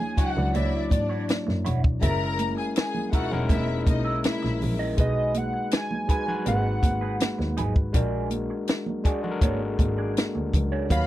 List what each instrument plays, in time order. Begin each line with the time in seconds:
Already playing: tine electric piano F#3 D4 E4 C#5, string section G#4 G#5, analog synth lead G#5
0.00 high conga, low conga
0.17 double bass C#2, tine electric piano F#3 D4 E4 C#5, clean electric guitar E4 F#4 C#5, string section F#4 F#5, analog synth lead F#5, kick, closed hi-hat, muted conga
0.35 double bass C#2, tine electric piano F#3 D4 E4 D5, muted clean electric guitar stroke, low conga
0.54 double bass C#2, clean electric guitar E4 F#4 C#5, string section E4 E5, analog synth lead D5, closed hi-hat, muted conga, high conga
0.90 double bass G#2, string section D4 D5, muted clean electric guitar stroke, kick, closed hi-hat, high conga
1.09 clean electric guitar E4 F#4 C#5
1.28 muted clean electric guitar stroke, snare, closed hi-hat, muted conga, high conga
1.46 double bass F#2, muted clean electric guitar stroke, snare, high conga
1.65 double bass E1, clean electric guitar E4 F#4 C#5, closed hi-hat, muted conga, low conga
1.83 muted clean electric guitar stroke, kick
2.01 double bass F#1, tine electric piano G#3 C#4 E4 G#4, clean electric guitar E4 A#4 E5, string section A#4 A#5, kick, closed hi-hat, muted conga
2.11 tine electric piano A#4
2.39 closed hi-hat, muted conga, high conga
2.57 string section G#4 G#5, muted clean electric guitar stroke
2.76 string section G#4 G#5, muted clean electric guitar stroke, snare, closed hi-hat, muted conga
2.95 high conga, low conga
3.12 double bass E1, tine electric piano G#3 D#4 E4 A#4, clean electric guitar E4 A#4 E5, string section F#4 F#5, kick, closed hi-hat, muted conga
3.30 double bass E1, tine electric piano G#3 C#4 E4 A#4, muted clean electric guitar stroke, low conga
3.49 double bass E1, clean electric guitar E4 A#4 D#5, string section E4 E5, kick, closed hi-hat, muted conga, high conga
3.86 double bass B1, string section D#4 D#5, muted clean electric guitar stroke, kick, closed hi-hat, muted conga, high conga
4.05 clean electric guitar E4 A#4 E5
4.24 string section E4 E5, muted clean electric guitar stroke, snare, closed hi-hat, muted conga, high conga
4.42 double bass A#1, muted clean electric guitar stroke, snare, high conga
4.61 double bass A#1, open hi-hat, muted conga, low conga
4.79 clean electric guitar E4 A#4 D#5
4.97 double bass B1, tine electric piano G#3 D#4 F#4 B4, clean electric guitar D#4 G#4 B4, analog synth lead D#5, kick, closed hi-hat, muted conga
5.34 analog synth lead F#5, closed hi-hat, high conga
5.53 muted clean electric guitar stroke
5.71 analog synth lead G#5, muted clean electric guitar stroke, snare, closed hi-hat, muted conga
5.91 high conga, low conga
6.08 tine electric piano G#3 D#4 F#4 B4, clean electric guitar D#4 G#4 B4, analog synth lead G#5, kick, closed hi-hat, muted conga
6.26 tine electric piano G#3 D#4 F#4 B4, low conga
6.45 double bass G#1, clean electric guitar D#4 G#4 B4, analog synth lead F#5, closed hi-hat, high conga
6.83 double bass G#1, muted clean electric guitar stroke, kick, closed hi-hat, muted conga, high conga
7.01 clean electric guitar D#4 G#4 B4
7.20 muted clean electric guitar stroke, snare, closed hi-hat, muted conga, high conga
7.38 double bass D#2, muted clean electric guitar stroke, snare, high conga
7.57 double bass G#1, clean electric guitar D#4 G#4 B4, closed hi-hat, muted conga, low conga
7.76 muted clean electric guitar stroke, kick
7.93 double bass A#1, tine electric piano G#3 D4 F#4 A#4, clean electric guitar D4 G#4 D5, kick, closed hi-hat
8.30 closed hi-hat, high conga
8.50 muted clean electric guitar stroke
8.68 muted clean electric guitar stroke, snare, closed hi-hat
8.86 high conga, low conga
9.04 tine electric piano G#3 D4 F#4 G#4, clean electric guitar D4 G#4 D5, kick, closed hi-hat, muted conga
9.22 tine electric piano G#3 D4 F#4 A4, low conga
9.31 tine electric piano A#4
9.41 double bass G#1, clean electric guitar D4 G#4 C#5, kick, closed hi-hat, muted conga, high conga
9.79 double bass G#1, muted clean electric guitar stroke, kick, closed hi-hat, muted conga, high conga
9.98 clean electric guitar D4 G#4 D5
10.16 muted clean electric guitar stroke, snare, closed hi-hat, muted conga, high conga
10.35 double bass D2, muted clean electric guitar stroke, high conga
10.53 double bass C#2, kick, closed hi-hat, muted conga, low conga
10.72 clean electric guitar D4 G#4 C#5
10.89 double bass D#2, tine electric piano F#3 D#4 F#4 C#5, clean electric guitar F#4 C#5 F5, string section B4 B5, analog synth lead F5, kick, closed hi-hat, muted conga